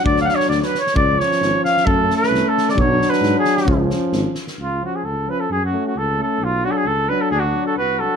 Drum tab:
SD |-ooooooo|--ooo-oo|--ooo-oo|--ooo-oo|
BD |o-------|o-------|o-------|o-------|

SD |--o-o-oo|--------|--------|--------|
BD |o-------|--------|--------|--------|

SD |--------|
BD |--------|